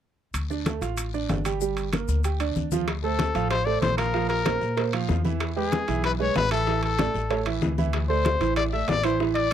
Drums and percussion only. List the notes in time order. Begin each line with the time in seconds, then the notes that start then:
0.34 high conga, high timbale, long guiro, claves, maracas
0.50 high conga, maracas
0.66 high conga, high timbale, short guiro, maracas
0.82 high conga, high timbale, short guiro, maracas
0.97 high conga, high timbale, long guiro, claves, maracas
1.14 high conga, maracas
1.29 high conga, high timbale, low timbale, short guiro, maracas
1.45 high timbale, short guiro, claves, maracas
1.61 high conga, long guiro, maracas
1.77 high conga, high timbale, maracas
1.93 high conga, high timbale, short guiro, claves, maracas
2.08 high conga, short guiro, maracas
2.24 high conga, high timbale, long guiro, maracas
2.40 high conga, high timbale, claves, maracas
2.56 high conga, short guiro, maracas
2.72 high conga, short guiro, maracas
2.88 high bongo, high conga, high timbale, long guiro, claves
3.04 high conga
3.19 high bongo, high conga, high timbale, short guiro
3.35 high conga, high timbale, short guiro
3.51 high bongo, high conga, high timbale, long guiro, claves
3.67 high conga
3.82 high bongo, low bongo, high conga, high timbale, short guiro
3.98 high timbale, short guiro, claves
4.14 high bongo, high conga, long guiro
4.30 high bongo, high conga, high timbale
4.45 high bongo, high conga, high timbale, short guiro, claves
4.61 high bongo, high conga, short guiro
4.77 high bongo, high conga, high timbale, long guiro
4.93 high conga, high timbale, claves
5.09 high bongo, low bongo, high conga, short guiro
5.25 high bongo, high conga, short guiro
5.40 high bongo, high conga, high timbale, long guiro, claves
5.57 high conga
5.72 high bongo, high conga, high timbale, short guiro
5.88 high conga, high timbale, short guiro
6.04 high bongo, high conga, high timbale, long guiro, claves
6.20 high conga
6.36 high bongo, low bongo, high conga, high timbale, low timbale, short guiro
6.51 high timbale, short guiro, claves
6.67 high bongo, high conga, long guiro
6.83 high bongo, high conga, high timbale
6.98 high bongo, high conga, high timbale, short guiro, claves
7.14 high bongo, high conga, short guiro
7.30 high bongo, high conga, high timbale, long guiro
7.46 high conga, high timbale, claves
7.62 high bongo, low bongo, high conga, short guiro
7.78 high bongo, high conga, short guiro
7.93 high bongo, high conga, high timbale, long guiro, claves
8.10 high conga
8.25 high bongo, high conga, high timbale, short guiro
8.41 high conga, high timbale, short guiro
8.56 high bongo, high conga, high timbale, long guiro, claves
8.73 high conga
8.88 high bongo, low bongo, high conga, high timbale, low timbale, short guiro
9.04 high timbale, short guiro, claves
9.20 high bongo, high conga, long guiro
9.35 high bongo, high conga, high timbale